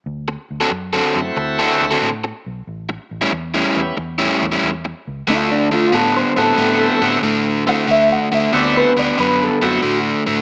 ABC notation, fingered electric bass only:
X:1
M:4/4
L:1/8
Q:"Swing" 1/4=92
K:Dmix
V:1 name="Fingered electric bass" clef=bass
D,, D,, F,, F,, D,, D,, A,, B,,, | A,,, A,,, E,, E,, E,, E,, E,, ^C,, | D,,2 A,, A,, A,, A,, A,,2 | D,, D,, D,, D,, F,, F,, A,, A,, |]